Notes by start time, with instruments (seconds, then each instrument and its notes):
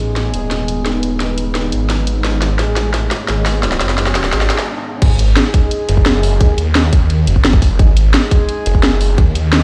Already playing: detuned saw bass A1, brass ensemble G#3 D#4 G#4, ambient pad G#3 B3 D#4 B4, riser
0.16 snare, closed hi-hat
0.34 detuned saw bass D#1, closed hi-hat
0.51 snare, closed hi-hat
0.68 closed hi-hat
0.86 brass ensemble G#3 D#4 G#4, snare, closed hi-hat
1.03 closed hi-hat
1.20 brass ensemble G#3 D#4 G#4, snare, closed hi-hat
1.38 closed hi-hat
1.55 snare, closed hi-hat
1.72 detuned saw bass G#1, closed hi-hat
1.90 snare, closed hi-hat
2.07 closed hi-hat
2.24 detuned saw bass G#1, brass ensemble G#3 D#4 G#4, ambient pad C#5, snare, closed hi-hat
2.42 snare, closed hi-hat
2.59 detuned saw bass A1, brass ensemble G#3 D#4 G#4, snare, closed hi-hat
2.76 snare, closed hi-hat
2.94 brass ensemble G#3 D#4 G#4, snare, closed hi-hat
3.11 snare, closed hi-hat
3.28 detuned saw bass G#1, brass ensemble G#3 D#4 G#4, snare, closed hi-hat
3.46 snare, open hi-hat
3.63 brass ensemble G#3 D#4 G#4, snare, closed hi-hat, noise sweep
3.72 snare
3.81 detuned saw bass F#1, snare, closed hi-hat
3.89 snare
3.98 brass ensemble G#3 D#4 G#4, snare, closed hi-hat
4.07 snare
4.15 snare, closed hi-hat
4.24 snare
4.33 detuned saw bass G#1, brass ensemble G#3 D#4 G#4, snare, closed hi-hat
4.41 snare
4.50 brass ensemble G#3 D#4 G#4, snare, closed hi-hat
4.59 snare
5.02 detuned saw bass G#1, brass ensemble G#3 D#4 G#4, kick, closed hi-hat, crash
5.19 closed hi-hat
5.37 brass ensemble G#3 D#4 G#4, snare, closed hi-hat
5.54 kick, closed hi-hat
5.71 closed hi-hat
5.89 detuned saw bass F#1, closed hi-hat
5.97 kick
6.06 snare, closed hi-hat
6.23 open hi-hat
6.41 detuned saw bass D#2, brass ensemble G#3 D#4 G#4, kick, closed hi-hat
6.58 closed hi-hat
6.75 brass ensemble G#3 D#4 G#4, snare, closed hi-hat
6.93 detuned saw bass D#2, kick, closed hi-hat
7.10 closed hi-hat
7.27 detuned saw bass F#1, closed hi-hat
7.36 kick
7.45 snare, closed hi-hat
7.53 kick
7.62 kick, open hi-hat
7.79 detuned saw bass G#1, brass ensemble G#3 D#4 G#4, kick, closed hi-hat
7.97 closed hi-hat
8.14 brass ensemble G#3 D#4 G#4, snare, closed hi-hat
8.31 kick, closed hi-hat
8.49 closed hi-hat
8.66 detuned saw bass F#1, closed hi-hat
8.75 kick
8.83 snare, closed hi-hat
9.01 open hi-hat
9.18 detuned saw bass D#2, kick, closed hi-hat
9.35 closed hi-hat
9.53 brass ensemble G#3 D#4 G#4, snare, closed hi-hat